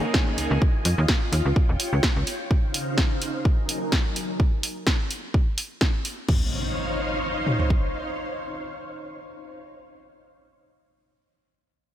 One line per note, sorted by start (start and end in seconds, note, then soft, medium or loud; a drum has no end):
0.00 0.60 D#4 medium
0.00 0.14 G#4 medium
0.00 0.61 A#4 medium
0.00 1.31 G#5 medium
0.00 downlifter medium
0.05 0.13 A#3 medium
0.05 0.14 C#4 medium
0.14 0.36 D#3 medium
0.14 0.37 A#3 medium
0.14 0.38 C#4 loud
0.14 0.39 G#4 loud
0.14 kick loud
0.14 snare loud
0.37 0.48 C#2 soft
0.37 0.51 D#3 medium
0.37 0.51 A#3 medium
0.37 0.51 C#4 medium
0.37 0.49 G#4 medium
0.37 open hi-hat medium
0.50 0.59 C#2 medium
0.50 0.63 A#3 medium
0.50 0.62 C#4 medium
0.50 0.61 G#4 medium
0.61 2.48 F4 medium
0.61 1.32 D#5 medium
0.61 kick loud
0.85 0.95 F2 medium
0.85 open hi-hat loud
0.98 1.06 D#2 loud
1.08 kick loud
1.08 snare loud
1.32 1.42 D#2 medium
1.32 2.49 C#5 medium
1.32 2.49 G5 medium
1.32 open hi-hat medium
1.46 1.53 C#2 medium
1.56 kick loud
1.69 1.77 D#1 loud
1.80 open hi-hat loud
1.93 2.01 C#2 loud
2.03 kick loud
2.03 snare loud
2.16 2.24 C#2 medium
2.27 open hi-hat medium
2.50 3.44 C#3 medium
2.50 3.44 D#4 medium
2.50 3.44 C5 medium
2.50 3.44 F5 medium
2.50 kick loud
2.74 open hi-hat loud
2.98 kick loud
2.98 snare loud
3.22 open hi-hat medium
3.45 4.39 F#3 medium
3.45 4.39 D#4 medium
3.45 4.39 A#4 medium
3.45 4.39 G#5 medium
3.45 kick loud
3.69 open hi-hat loud
3.92 kick loud
3.92 snare loud
4.16 open hi-hat medium
4.40 kick loud
4.63 open hi-hat loud
4.87 kick loud
4.87 snare loud
5.11 open hi-hat medium
5.34 kick loud
5.58 open hi-hat loud
5.81 kick loud
5.81 snare loud
6.05 open hi-hat medium
6.29 9.59 D#4 medium
6.29 9.59 C5 medium
6.29 9.59 C#5 medium
6.29 9.59 F5 medium
6.29 kick loud
6.29 crash medium
6.29 impact medium
7.47 mid tom medium
7.60 floor tom medium
7.70 kick medium